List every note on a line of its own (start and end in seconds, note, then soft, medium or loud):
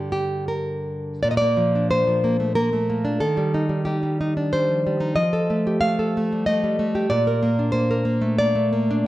0.00 1.20 G2 soft
0.00 1.24 D3 soft
0.12 0.48 G4 medium
0.48 1.20 A#4 medium
1.23 3.18 A#2 medium
1.23 1.30 D5 medium
1.31 1.37 D#5 medium
1.37 1.89 D5 medium
1.42 1.90 A#3 soft
1.57 2.06 F3 soft
1.75 2.74 D4 soft
1.91 2.23 A#3 soft
1.91 2.55 C5 medium
2.07 3.05 F3 soft
2.24 2.40 A#3 soft
2.40 2.56 A3 soft
2.55 2.73 A#3 soft
2.55 3.18 A#4 medium
2.73 3.21 A3 soft
2.90 3.21 A#3 soft
3.05 3.21 D4 soft
3.20 5.14 D#3 medium
3.20 3.83 A4 medium
3.37 3.68 G3 soft
3.54 3.85 D#4 soft
3.69 4.02 G3 soft
3.85 4.19 D#4 soft
3.85 4.17 G4 medium
4.03 4.53 G3 soft
4.21 4.37 D#4 soft
4.37 5.19 D4 soft
4.53 4.85 G3 soft
4.53 5.15 C5 medium
4.69 5.15 F3 soft
4.87 5.19 G3 soft
5.00 5.17 D#4 soft
5.16 7.06 F3 medium
5.16 5.79 D#5 medium
5.33 5.98 A4 soft
5.50 5.81 A3 soft
5.67 6.63 G4 soft
5.81 6.16 A3 soft
5.81 6.43 F5 medium
5.99 6.95 A4 soft
6.17 6.47 A3 soft
6.33 6.62 G3 soft
6.46 6.78 A3 soft
6.46 7.08 D#5 medium
6.64 7.11 G3 soft
6.79 7.11 A3 soft
6.95 7.11 G4 soft
7.10 9.04 A#2 medium
7.10 7.72 D5 medium
7.27 7.90 A#4 soft
7.43 7.72 A#3 soft
7.59 8.56 D4 soft
7.72 8.04 A#3 soft
7.72 8.35 C5 medium
7.91 8.91 A#4 soft
8.05 8.39 A#3 soft
8.22 8.54 A3 soft
8.38 8.71 A#3 medium
8.38 9.05 D5 medium
8.55 9.07 A3 soft
8.73 9.07 A#3 medium
8.91 9.07 D4 medium